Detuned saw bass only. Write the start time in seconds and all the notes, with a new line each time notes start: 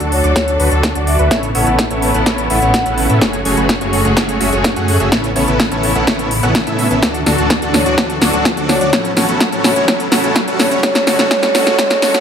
0.00 D2
0.24 D2
0.36 D2
0.60 D2
0.72 D2
0.95 D2
1.19 D2
1.31 A1
1.55 A1
1.67 A1
1.90 A1
2.14 A1
2.26 A1
2.50 A1
2.62 A1
2.86 A1
3.10 A2
3.21 F#1
3.45 F#1
3.57 F#1
3.81 F#1
4.05 F#1
4.17 F#1
4.41 F#1
4.52 F#1
4.76 F#2
5.00 F#1
5.12 A1
5.36 A1
5.48 A1
5.71 A1
5.95 A1
6.07 A1
6.43 A1
6.67 A2
6.91 A1
7.03 D2
7.26 D2
7.38 D2
7.62 D2
7.86 D2
7.98 D2
8.22 D2
8.33 D2
8.57 D2
8.81 D2
8.93 A1
9.17 A1
9.29 A1
9.52 A1
9.76 A1
9.88 A1
10.12 A1
10.24 A1
10.48 A1
10.71 F#1
10.83 F#1
11.07 F#1
11.19 F#1
11.31 F#1
11.55 F#1
11.67 F#1
11.79 F#1
12.02 F#1
12.14 F#1